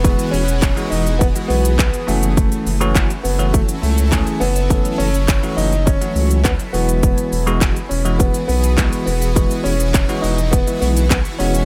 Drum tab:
HH |xxoxxxoxxxoxxxox|xxoxxxoxxxoxxxox|xxoxxxoxxxoxxxox|xxoxxxoxxxoxxxox|
SH |xxxxxxxxxxxxxxxx|xxxxxxxxxxxxxxxx|xxxxxxxxxxxxxxxx|xxxxxxxxxxxxxxxx|
CP |----x-------x---|----x-------x---|----x-------x---|----x-------x---|
BD |o---o---o---o---|o---o---o---o---|o---o---o---o---|o---o---o---o---|

HH |xxoxxxoxxxoxxxox|
SH |xxxxxxxxxxxxxxxx|
CP |----x-------x---|
BD |o---o---o---o---|